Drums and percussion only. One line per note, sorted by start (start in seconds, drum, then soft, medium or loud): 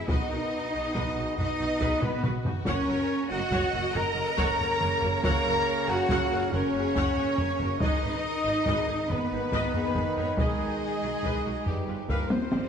0.08 taiko loud
0.95 taiko medium
1.38 taiko low medium
1.80 taiko medium
2.02 taiko low-mid medium
2.24 taiko low-mid medium
2.45 taiko low loud
2.66 taiko medium
3.51 taiko medium
3.95 taiko low medium
4.38 taiko medium
4.60 taiko low medium
4.81 taiko low medium
5.02 taiko low medium
5.23 taiko loud
6.09 taiko medium
6.53 taiko low medium
6.95 taiko medium
7.17 taiko low medium
7.38 taiko low medium
7.59 taiko low medium
7.80 taiko loud
8.66 taiko medium
9.09 taiko low medium
9.52 taiko medium
9.74 taiko low medium
9.95 taiko low medium
10.16 taiko low medium
10.37 taiko medium
11.23 taiko medium
11.66 taiko low medium
12.09 taiko medium
12.30 taiko high medium
12.52 taiko high medium